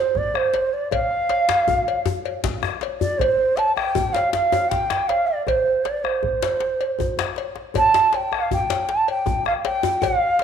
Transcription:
Already playing: bansuri C5
0.15 bansuri D5, bombo low, djembe slap, djembe bass
0.34 bansuri C5, bombo rim, djembe tone
0.54 cowbell, djembe slap
0.73 bansuri D5
0.91 bansuri F5, bombo low, cowbell, djembe bass
1.10 djembe slap
1.29 cowbell, djembe slap
1.48 bombo rim, djembe slap, djembe tone
1.68 bombo low, djembe tone, djembe bass
1.88 cowbell
2.06 djembe slap, djembe bass
2.25 cowbell
2.44 bombo low, djembe slap, djembe bass
2.62 bombo rim, djembe tone
2.81 cowbell, djembe slap
3.00 bansuri D5, djembe bass
3.18 bansuri C5, bombo low, cowbell, djembe bass
3.38 djembe slap
3.57 bansuri A5, cowbell, djembe slap
3.75 bansuri G5, bombo rim, djembe tone
3.95 bombo low, djembe tone, djembe bass
4.13 bansuri F5, cowbell, djembe slap
4.33 bansuri F5, djembe slap
4.52 cowbell, djembe tone
4.69 bansuri G5, bombo low, djembe slap
4.90 bombo rim, djembe slap, djembe tone
5.08 bansuri F5, cowbell, djembe slap
5.27 bansuri D5
5.46 bansuri C5, bombo rim, bombo low, cowbell, djembe bass
5.67 djembe slap
5.83 bansuri D5, cowbell, djembe slap
6.03 bansuri C5, bombo rim, djembe slap, djembe tone
6.23 bombo low, djembe bass
6.42 bombo rim, cowbell, djembe slap
6.60 djembe slap
6.81 cowbell
6.99 bombo low, djembe tone, djembe bass
7.17 bombo rim, djembe slap, djembe bass
7.36 cowbell, djembe slap
7.56 djembe slap
7.74 bansuri A5, bombo low, cowbell, djembe tone, djembe bass
7.94 djembe slap
8.13 bansuri G5, cowbell, djembe slap
8.32 bansuri F5, bombo rim, djembe tone
8.51 bansuri G5, bombo low, djembe tone
8.70 cowbell, djembe slap
8.89 bansuri A5, djembe slap
9.08 bansuri G5, cowbell
9.26 bombo low, djembe slap, djembe tone, djembe bass
9.45 bansuri F5, bombo rim, djembe tone
9.65 bansuri G5, cowbell, djembe slap
9.83 djembe tone
10.02 bansuri F5, bombo low, cowbell, djembe tone, djembe bass
10.39 bansuri F5, djembe slap

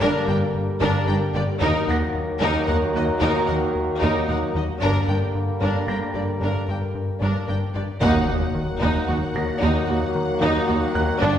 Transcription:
Already playing: trombone section D3 G3, french horn section A#3 A#4
0.00 double bass section G1, analog synth bass G2, cello section G2, violin section D4 A#4, viola section D4
0.28 double bass section G1, analog synth bass G2, cello section G2, viola section D4, violin section A#4 G5
0.55 analog synth bass G2
0.80 double bass section G1, analog synth bass G2, cello section G2, violin section D4 A#4, viola section D4
1.07 double bass section G1, analog synth bass G2, cello section G2, viola section D4, violin section A#4 G5
1.34 double bass section G1, analog synth bass G2, cello section G2, viola section D4, violin section G4 D5
1.61 analog synth bass D#2, double bass section D#2, cello section D#2, trombone section D#3 F#3, french horn section A#3 A#4, violin section D#4 A#4, viola section D#4
1.87 double bass section D#2, analog synth bass D#2, cello section D#2, viola section D#4, violin section A#4 F#5, grand piano A#6
2.14 analog synth bass D#2
2.40 double bass section D#2, analog synth bass D#2, cello section D#2, violin section D#4 A#4, viola section D#4
2.67 double bass section D#2, analog synth bass D#2, cello section D#2, viola section D#4, violin section A#4 F#5
2.95 double bass section D#2, cello section D#2, analog synth bass D#2, viola section D#4, violin section F#4 D#5, grand piano F#6
3.21 cello section D#2, double bass section D#2, analog synth bass D#2, violin section D#4 A#4, viola section D#4
3.47 double bass section D#2, cello section D#2, analog synth bass D#2, viola section D#4, violin section A#4 F#5
3.75 analog synth bass D#2
4.00 double bass section D#2, cello section D#2, analog synth bass D#2, violin section D#4 A#4, viola section D#4
4.28 cello section D#2, double bass section D#2, analog synth bass D#2, viola section D#4, violin section A#4 F#5
4.54 cello section D#2, double bass section D#2, analog synth bass D#2, viola section D#4, violin section F#4 D#5
4.80 double bass section G1, analog synth bass G2, cello section G2, trombone section D3 G3, french horn section A#3 A#4, violin section D4 A#4, viola section D4
5.08 double bass section G1, analog synth bass G2, cello section G2, viola section D4, violin section A#4 G5
5.35 analog synth bass G2
5.60 double bass section G1, cello section G2, analog synth bass G2, violin section D4 A#4, viola section D4
5.87 double bass section G1, analog synth bass G2, cello section G2, viola section D4, violin section A#4 G5, grand piano A#6
6.13 double bass section G1, analog synth bass G2, cello section G2, viola section D4, violin section G4 D5
6.41 double bass section G1, analog synth bass G2, cello section G2, violin section D4 A#4, viola section D4
6.67 double bass section G1, cello section G2, analog synth bass G2, viola section D4, violin section A#4 G5
6.95 analog synth bass G2
7.19 double bass section G1, cello section G2, analog synth bass G2, violin section D4 A#4, viola section D4
7.47 double bass section G1, cello section G2, analog synth bass G2, viola section D4, violin section A#4 G5
7.74 double bass section G1, cello section G2, analog synth bass G2, viola section D4, violin section G4 D5
8.01 double bass section D#2, cello section D#2, analog synth bass D#2, trombone section D#3 F#3, french horn section A#3 A#4, violin section D#4 F#5, viola section D#4, impact
8.26 cello section D#2, analog synth bass D#2, double bass section D#2, viola section D#4, violin section F#4
8.55 analog synth bass D#3
8.80 analog synth bass D#2, cello section D#2, double bass section D#2, violin section D#4, viola section D#4, grand piano F#6
9.07 double bass section D#2, analog synth bass D#2, cello section D#2, viola section D#4, violin section F#4
9.33 double bass section D#2, analog synth bass D#2, cello section D#2, viola section D#4, violin section A#4, grand piano A#6
9.60 double bass section D#2, cello section D#2, analog synth bass D#2, violin section D#4, viola section D#4
9.86 cello section D#2, analog synth bass D#2, double bass section D#2, viola section D#4, violin section F#4
10.15 analog synth bass D#3
10.41 cello section D#2, analog synth bass D#2, double bass section D#2, violin section D#4, viola section D#4
10.67 cello section D#2, double bass section D#2, analog synth bass D#2, viola section D#4, violin section F#4
10.94 analog synth bass D#2, cello section D#2, double bass section D#2, viola section D#4, violin section A#4, grand piano F#6
11.20 double bass section G1, analog synth bass G2, cello section G2, trombone section D3 G3, french horn section A#3 A#4, violin section D4 G5, viola section D4

